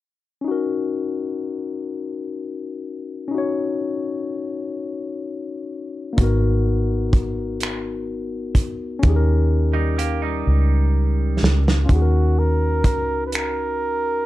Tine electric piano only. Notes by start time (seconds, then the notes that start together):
0.41 C#4 D#4
0.48 F#4 A#4
3.28 C#4 D#4
3.35 F#4 C#5
6.13 A#3 D#4
6.20 B3 F#4 A#4
8.99 C#4 D#4
9.06 G4 G#4
9.16 A#4
11.86 C#4 D#4
11.92 F#4 G#4
12.02 A#4